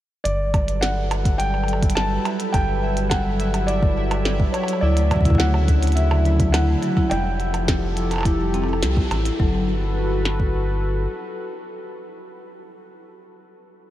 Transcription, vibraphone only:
4.83 E4
4.97 A3
5.11 F#3
5.25 E4
5.40 A3
6.25 F#3
6.54 E4
6.68 A3
6.83 F#3
6.97 E4
7.11 G3
7.97 F3
8.25 E4
8.40 G3
8.54 C4
8.68 E4
8.83 G3
9.11 E4
9.25 E4
9.40 F#3

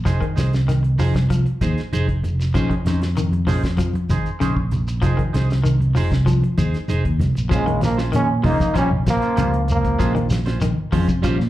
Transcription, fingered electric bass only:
0.06 F1
0.37 C2
0.98 F1
1.15 C2
1.62 D#2
1.92 F1
2.55 A#1
2.85 F2
3.47 A#1
3.64 F2
4.10 G#1
4.41 A#1
5.03 F1
5.34 C2
5.97 F1
6.12 C2
6.58 D#2
6.90 F1
7.06 D#2
7.21 C2
7.37 A#1
7.52 A#1
8.14 A#2
8.45 C#2
8.76 A#1
8.92 A#1
9.06 A#1
9.38 C#2
10.00 A#1
10.62 A#1
10.78 muted fingered electric bass stroke
10.93 F2
11.24 A#1
11.39 A#2

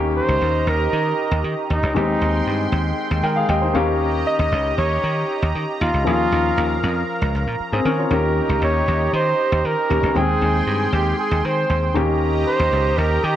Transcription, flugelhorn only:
0.17 C5
0.69 A#4
1.70 D#4
1.96 D#4
4.27 D#5
4.78 C#5
5.81 F4
6.07 F4
8.13 A#4
8.64 C#5
9.15 C5
9.66 A#4
10.17 G#4
10.93 G4
11.19 G#4
11.45 C5
12.48 C5
12.98 A#4
13.24 G4

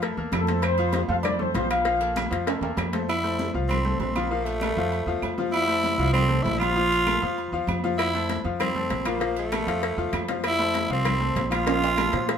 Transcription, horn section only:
0.33 A3 A4
0.64 C4 C5
0.93 C4 C5
1.08 F4 F5
1.23 D4 D5
1.40 C4 C5
1.55 C4 C5
1.70 F4 F5

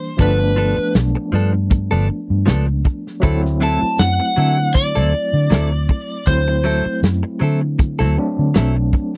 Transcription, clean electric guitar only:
0.19 F3 B3 D4 A4
0.40 muted clean electric guitar stroke
0.56 F3 B3 D4 A4
0.77 muted clean electric guitar stroke
1.15 muted clean electric guitar stroke
1.32 F3 B3 D4 A4
1.53 muted clean electric guitar stroke
1.71 muted clean electric guitar stroke
1.91 F3 B3 D4 A4
2.08 muted clean electric guitar stroke
2.46 F3 B3 D4 A4
2.67 muted clean electric guitar stroke
2.85 muted clean electric guitar stroke
3.22 F#3 C4 E4 A4
3.43 muted clean electric guitar stroke
3.60 F#3 C4 E4 A4
4.20 muted clean electric guitar stroke
4.36 F#3 C4 E4 A4
4.58 muted clean electric guitar stroke
4.75 muted clean electric guitar stroke
4.95 F#3 C4 E4 A4
5.13 muted clean electric guitar stroke
5.50 F#3 C4 E4 A4
5.89 muted clean electric guitar stroke
6.48 muted clean electric guitar stroke
6.64 F#3 C4 E4 A4
6.85 muted clean electric guitar stroke
7.23 muted clean electric guitar stroke
7.40 F#3 C4 E4 A4
7.61 muted clean electric guitar stroke
7.79 muted clean electric guitar stroke
7.99 F#3 C4 E4 A4
8.17 muted clean electric guitar stroke
8.54 F#3 C4 E4 A4
8.76 muted clean electric guitar stroke
8.93 muted clean electric guitar stroke

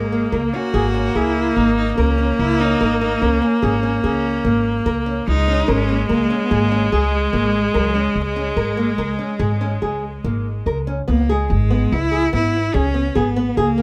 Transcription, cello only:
Already playing: G#3
0.34 A#3
0.55 F#4
1.16 E4
1.57 D#4
1.77 D#4
1.97 C#4
2.40 E4
2.61 D#4
3.02 D#4
3.22 C#4
3.42 A#3
3.64 C#4
4.05 C#4
5.28 D#4
5.68 C#4
6.09 A#3
6.44 B3
6.49 A#3
6.92 G#3
7.33 G#3
7.75 F#3
7.95 G#3
11.10 A#3
11.31 G#3
11.51 G#3
11.93 E4
12.34 E4
12.74 C#4
13.16 B3
13.55 A#3

